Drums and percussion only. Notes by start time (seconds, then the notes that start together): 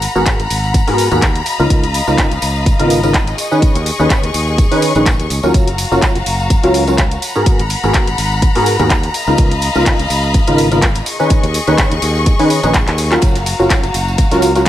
0.02 open hi-hat, tambourine
0.16 tambourine
0.26 kick, clap, closed hi-hat, tambourine
0.40 closed hi-hat, tambourine
0.50 open hi-hat, tambourine
0.64 tambourine
0.74 kick, closed hi-hat, tambourine
0.88 open hi-hat, tambourine
0.98 open hi-hat, tambourine
1.11 closed hi-hat, tambourine
1.22 kick, clap, closed hi-hat, tambourine
1.36 closed hi-hat, tambourine
1.46 open hi-hat, tambourine
1.60 tambourine
1.70 kick, closed hi-hat, tambourine
1.83 closed hi-hat, tambourine
1.94 open hi-hat, tambourine
2.07 tambourine
2.18 kick, clap, closed hi-hat, tambourine
2.31 closed hi-hat, tambourine
2.42 open hi-hat, tambourine
2.56 tambourine
2.66 kick, closed hi-hat, tambourine
2.80 closed hi-hat, tambourine
2.90 open hi-hat, tambourine
3.03 closed hi-hat, tambourine
3.14 kick, clap, closed hi-hat, tambourine
3.27 closed hi-hat, tambourine
3.38 open hi-hat, tambourine
3.52 tambourine
3.62 kick, closed hi-hat, tambourine
3.75 closed hi-hat, tambourine
3.86 open hi-hat, tambourine
4.00 tambourine
4.10 kick, clap, closed hi-hat, tambourine
4.23 closed hi-hat, tambourine
4.34 open hi-hat, tambourine
4.48 tambourine
4.58 kick, closed hi-hat, tambourine
4.72 open hi-hat, tambourine
4.82 open hi-hat, tambourine
4.95 closed hi-hat, tambourine
5.06 kick, clap, closed hi-hat, tambourine
5.19 closed hi-hat, tambourine
5.30 open hi-hat, tambourine
5.43 tambourine
5.54 kick, closed hi-hat, tambourine
5.68 closed hi-hat, tambourine
5.78 open hi-hat, tambourine
5.92 tambourine
6.02 kick, clap, closed hi-hat, tambourine
6.15 closed hi-hat, tambourine
6.26 open hi-hat, tambourine
6.39 tambourine
6.50 kick, closed hi-hat, tambourine
6.63 closed hi-hat, tambourine
6.74 open hi-hat, tambourine
6.87 closed hi-hat, tambourine
6.98 kick, clap, closed hi-hat
7.11 closed hi-hat, tambourine
7.22 open hi-hat, tambourine
7.35 tambourine
7.46 kick, closed hi-hat, tambourine
7.59 closed hi-hat, tambourine
7.70 open hi-hat, tambourine
7.83 tambourine
7.94 kick, clap, closed hi-hat, tambourine
8.07 closed hi-hat, tambourine
8.18 open hi-hat, tambourine
8.32 tambourine
8.42 kick, closed hi-hat, tambourine
8.55 open hi-hat, tambourine
8.66 open hi-hat, tambourine
8.79 closed hi-hat, tambourine
8.90 kick, clap, closed hi-hat, tambourine
9.03 closed hi-hat, tambourine
9.14 open hi-hat, tambourine
9.27 tambourine
9.38 kick, closed hi-hat, tambourine
9.51 closed hi-hat, tambourine
9.62 open hi-hat, tambourine
9.75 tambourine
9.86 kick, clap, closed hi-hat, tambourine
9.99 closed hi-hat, tambourine
10.10 open hi-hat, tambourine
10.23 tambourine
10.34 kick, closed hi-hat, tambourine
10.47 closed hi-hat, tambourine
10.58 open hi-hat, tambourine
10.72 closed hi-hat, tambourine
10.82 kick, clap, closed hi-hat, tambourine
10.95 closed hi-hat, tambourine
11.06 open hi-hat, tambourine
11.20 tambourine
11.30 kick, closed hi-hat, tambourine
11.43 closed hi-hat, tambourine
11.54 open hi-hat, tambourine
11.67 closed hi-hat, tambourine
11.78 kick, clap, closed hi-hat, tambourine
11.91 closed hi-hat, tambourine
12.02 open hi-hat, tambourine
12.15 tambourine
12.26 kick, closed hi-hat, tambourine
12.39 open hi-hat, tambourine
12.50 open hi-hat, tambourine
12.63 closed hi-hat, tambourine
12.74 kick, clap, closed hi-hat, tambourine
12.87 clap, closed hi-hat, tambourine
12.98 open hi-hat, tambourine
13.12 clap, closed hi-hat, tambourine
13.22 kick, closed hi-hat, ride, tambourine
13.35 snare, closed hi-hat, tambourine
13.46 open hi-hat, ride, tambourine
13.60 tambourine
13.70 kick, snare, clap, closed hi-hat, ride, tambourine
13.83 closed hi-hat, tambourine
13.94 open hi-hat, ride, tambourine
14.08 tambourine
14.18 kick, closed hi-hat, ride, tambourine
14.31 snare, closed hi-hat, tambourine
14.42 open hi-hat, ride, tambourine
14.55 snare, closed hi-hat, tambourine
14.66 ride